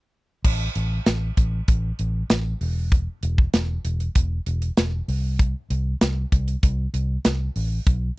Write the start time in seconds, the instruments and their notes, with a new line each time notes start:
0.44 fingered electric bass A1, kick, crash
0.75 fingered electric bass A1, closed hi-hat
1.06 fingered electric bass A1, snare, closed hi-hat, tambourine
1.37 fingered electric bass A1, kick, closed hi-hat
1.68 fingered electric bass A1, kick, closed hi-hat
1.99 fingered electric bass A1, closed hi-hat
2.30 fingered electric bass A1, snare, closed hi-hat, tambourine
2.61 fingered electric bass E1, open hi-hat
2.92 kick, closed hi-hat
3.23 fingered electric bass E1, closed hi-hat
3.38 kick
3.53 fingered electric bass E1, snare, closed hi-hat, tambourine
3.85 fingered electric bass E1, closed hi-hat
4.00 closed hi-hat
4.15 fingered electric bass E1, kick, closed hi-hat
4.46 fingered electric bass E1, closed hi-hat
4.62 closed hi-hat
4.77 fingered electric bass E1, snare, closed hi-hat, tambourine
5.08 fingered electric bass C2, open hi-hat
5.39 kick, closed hi-hat
5.70 fingered electric bass C2, closed hi-hat
6.01 fingered electric bass C2, snare, closed hi-hat, tambourine
6.32 fingered electric bass C2, kick, closed hi-hat
6.48 closed hi-hat
6.63 fingered electric bass C2, kick, closed hi-hat
6.94 fingered electric bass C2, closed hi-hat
7.25 fingered electric bass C2, snare, closed hi-hat, tambourine
7.56 fingered electric bass A1, open hi-hat
7.87 fingered electric bass B1, kick, closed hi-hat